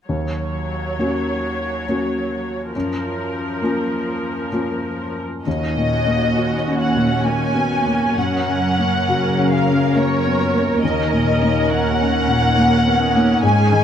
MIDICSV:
0, 0, Header, 1, 6, 480
1, 0, Start_track
1, 0, Key_signature, -6, "minor"
1, 0, Tempo, 899550
1, 44, Time_signature, 3, 2, 24, 8
1, 1003, Tempo, 867052
1, 1963, Tempo, 923077
1, 2923, Tempo, 902256
1, 4843, Tempo, 870827
1, 7472, End_track
2, 0, Start_track
2, 0, Title_t, "Violin section"
2, 0, Program_c, 0, 48
2, 2921, Note_on_c, 0, 75, 57
2, 3614, Note_off_c, 0, 75, 0
2, 3636, Note_on_c, 0, 78, 49
2, 3870, Note_on_c, 0, 80, 55
2, 3872, Note_off_c, 0, 78, 0
2, 4357, Note_off_c, 0, 80, 0
2, 4357, Note_on_c, 0, 78, 55
2, 5085, Note_off_c, 0, 78, 0
2, 5087, Note_on_c, 0, 77, 49
2, 5322, Note_off_c, 0, 77, 0
2, 5328, Note_on_c, 0, 73, 58
2, 5809, Note_off_c, 0, 73, 0
2, 5814, Note_on_c, 0, 75, 55
2, 6285, Note_off_c, 0, 75, 0
2, 6294, Note_on_c, 0, 78, 66
2, 7246, Note_on_c, 0, 80, 74
2, 7248, Note_off_c, 0, 78, 0
2, 7472, Note_off_c, 0, 80, 0
2, 7472, End_track
3, 0, Start_track
3, 0, Title_t, "Viola section"
3, 0, Program_c, 1, 48
3, 44, Note_on_c, 1, 54, 36
3, 44, Note_on_c, 1, 73, 36
3, 1460, Note_off_c, 1, 54, 0
3, 1460, Note_off_c, 1, 73, 0
3, 1478, Note_on_c, 1, 53, 42
3, 1478, Note_on_c, 1, 70, 41
3, 2793, Note_off_c, 1, 53, 0
3, 2793, Note_off_c, 1, 70, 0
3, 2916, Note_on_c, 1, 66, 41
3, 2918, Note_on_c, 1, 61, 41
3, 4333, Note_off_c, 1, 66, 0
3, 4357, Note_on_c, 1, 70, 40
3, 5784, Note_off_c, 1, 61, 0
3, 5807, Note_on_c, 1, 61, 42
3, 7246, Note_on_c, 1, 68, 47
3, 7247, Note_off_c, 1, 70, 0
3, 7472, Note_off_c, 1, 61, 0
3, 7472, Note_off_c, 1, 68, 0
3, 7472, End_track
4, 0, Start_track
4, 0, Title_t, "Harp"
4, 0, Program_c, 2, 46
4, 2921, Note_on_c, 2, 51, 31
4, 3165, Note_on_c, 2, 66, 27
4, 3402, Note_on_c, 2, 58, 29
4, 3637, Note_on_c, 2, 61, 32
4, 3873, Note_on_c, 2, 70, 30
4, 4108, Note_off_c, 2, 66, 0
4, 4114, Note_on_c, 2, 66, 29
4, 4356, Note_on_c, 2, 42, 37
4, 4377, Note_off_c, 2, 51, 0
4, 4843, Note_on_c, 2, 49, 27
4, 5080, Note_off_c, 2, 61, 0
4, 5087, Note_on_c, 2, 61, 33
4, 5320, Note_off_c, 2, 70, 0
4, 5327, Note_on_c, 2, 70, 31
4, 5499, Note_off_c, 2, 58, 0
4, 5565, Note_on_c, 2, 65, 29
4, 5812, Note_on_c, 2, 51, 38
4, 5827, Note_off_c, 2, 42, 0
4, 5827, Note_off_c, 2, 65, 0
4, 5828, Note_off_c, 2, 49, 0
4, 6051, Note_on_c, 2, 63, 32
4, 6238, Note_off_c, 2, 66, 0
4, 6290, Note_on_c, 2, 58, 32
4, 6523, Note_off_c, 2, 61, 0
4, 6530, Note_on_c, 2, 61, 32
4, 6763, Note_off_c, 2, 70, 0
4, 6770, Note_on_c, 2, 70, 35
4, 7001, Note_off_c, 2, 63, 0
4, 7008, Note_on_c, 2, 63, 35
4, 7244, Note_on_c, 2, 44, 44
4, 7265, Note_off_c, 2, 58, 0
4, 7266, Note_off_c, 2, 70, 0
4, 7268, Note_off_c, 2, 51, 0
4, 7472, Note_off_c, 2, 44, 0
4, 7472, Note_off_c, 2, 61, 0
4, 7472, Note_off_c, 2, 63, 0
4, 7472, End_track
5, 0, Start_track
5, 0, Title_t, "Felt piano"
5, 0, Program_c, 3, 0
5, 48, Note_on_c, 3, 39, 30
5, 136, Control_c, 3, 64, 127
5, 515, Note_off_c, 3, 39, 0
5, 528, Note_on_c, 3, 58, 25
5, 532, Note_on_c, 3, 61, 24
5, 535, Note_on_c, 3, 66, 27
5, 981, Note_off_c, 3, 58, 0
5, 983, Note_off_c, 3, 61, 0
5, 985, Note_off_c, 3, 66, 0
5, 1007, Note_on_c, 3, 58, 23
5, 1010, Note_on_c, 3, 61, 25
5, 1014, Note_on_c, 3, 66, 28
5, 1462, Note_off_c, 3, 58, 0
5, 1463, Note_off_c, 3, 61, 0
5, 1465, Note_off_c, 3, 66, 0
5, 1488, Note_on_c, 3, 42, 38
5, 1492, Control_c, 3, 64, 0
5, 1571, Control_c, 3, 64, 127
5, 1951, Note_off_c, 3, 42, 0
5, 1967, Note_on_c, 3, 58, 32
5, 1969, Note_on_c, 3, 61, 29
5, 1973, Note_on_c, 3, 65, 32
5, 2415, Note_off_c, 3, 58, 0
5, 2416, Note_off_c, 3, 61, 0
5, 2418, Note_off_c, 3, 65, 0
5, 2436, Note_on_c, 3, 58, 30
5, 2436, Note_on_c, 3, 61, 28
5, 2441, Note_on_c, 3, 65, 31
5, 2902, Note_off_c, 3, 61, 0
5, 2903, Note_off_c, 3, 58, 0
5, 2905, Note_off_c, 3, 65, 0
5, 2928, Note_on_c, 3, 39, 33
5, 2932, Control_c, 3, 64, 0
5, 3005, Control_c, 3, 64, 127
5, 3086, Note_on_c, 3, 46, 26
5, 3242, Note_on_c, 3, 58, 26
5, 3338, Note_off_c, 3, 46, 0
5, 3406, Note_on_c, 3, 66, 29
5, 3494, Note_off_c, 3, 58, 0
5, 3564, Note_on_c, 3, 61, 27
5, 3654, Note_off_c, 3, 66, 0
5, 3720, Note_on_c, 3, 46, 27
5, 3812, Note_off_c, 3, 61, 0
5, 3873, Note_on_c, 3, 58, 28
5, 3971, Note_off_c, 3, 46, 0
5, 4031, Note_on_c, 3, 59, 25
5, 4129, Note_off_c, 3, 58, 0
5, 4194, Note_off_c, 3, 59, 0
5, 4199, Note_on_c, 3, 58, 29
5, 4339, Note_off_c, 3, 39, 0
5, 4360, Note_off_c, 3, 58, 0
5, 4365, Note_on_c, 3, 42, 33
5, 4367, Control_c, 3, 64, 0
5, 4457, Control_c, 3, 64, 127
5, 4530, Note_on_c, 3, 49, 26
5, 4694, Note_on_c, 3, 58, 26
5, 4784, Note_off_c, 3, 49, 0
5, 4853, Note_on_c, 3, 66, 32
5, 4946, Note_off_c, 3, 58, 0
5, 5016, Note_on_c, 3, 61, 28
5, 5107, Note_off_c, 3, 66, 0
5, 5183, Note_on_c, 3, 49, 30
5, 5268, Note_off_c, 3, 61, 0
5, 5333, Note_on_c, 3, 58, 30
5, 5431, Note_off_c, 3, 49, 0
5, 5500, Note_on_c, 3, 59, 27
5, 5586, Note_off_c, 3, 58, 0
5, 5654, Note_off_c, 3, 59, 0
5, 5657, Note_on_c, 3, 58, 32
5, 5790, Note_off_c, 3, 42, 0
5, 5814, Note_off_c, 3, 58, 0
5, 5819, Control_c, 3, 64, 0
5, 5819, Note_on_c, 3, 39, 35
5, 5904, Control_c, 3, 64, 127
5, 5979, Note_on_c, 3, 46, 29
5, 6140, Note_on_c, 3, 58, 29
5, 6232, Note_off_c, 3, 46, 0
5, 6300, Note_on_c, 3, 63, 34
5, 6391, Note_off_c, 3, 58, 0
5, 6460, Note_on_c, 3, 61, 29
5, 6551, Note_off_c, 3, 63, 0
5, 6614, Note_on_c, 3, 46, 32
5, 6712, Note_off_c, 3, 61, 0
5, 6775, Note_on_c, 3, 58, 31
5, 6868, Note_off_c, 3, 46, 0
5, 6935, Note_on_c, 3, 59, 29
5, 7028, Note_off_c, 3, 58, 0
5, 7092, Note_off_c, 3, 59, 0
5, 7093, Note_on_c, 3, 58, 31
5, 7231, Note_off_c, 3, 39, 0
5, 7247, Note_on_c, 3, 44, 39
5, 7249, Note_off_c, 3, 58, 0
5, 7257, Control_c, 3, 64, 0
5, 7356, Control_c, 3, 64, 127
5, 7406, Note_on_c, 3, 51, 34
5, 7472, Note_off_c, 3, 44, 0
5, 7472, Note_off_c, 3, 51, 0
5, 7472, End_track
6, 0, Start_track
6, 0, Title_t, "Cello section"
6, 0, Program_c, 4, 48
6, 2922, Note_on_c, 4, 39, 40
6, 4336, Note_off_c, 4, 39, 0
6, 4359, Note_on_c, 4, 42, 38
6, 5787, Note_off_c, 4, 42, 0
6, 5814, Note_on_c, 4, 39, 44
6, 7246, Note_on_c, 4, 44, 50
6, 7250, Note_off_c, 4, 39, 0
6, 7472, Note_off_c, 4, 44, 0
6, 7472, End_track
0, 0, End_of_file